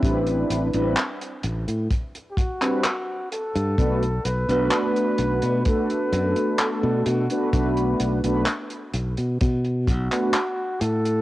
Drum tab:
HH |xxxxxxxxxxxxx-xx|xxxxxxxxxxxxx-xx|xxxxxxxxxxxxx-xx|
CP |----x------xx---|----x-------x---|----x------xx---|
BD |o-------o-o-----|o-------o-------|o-------o-o-----|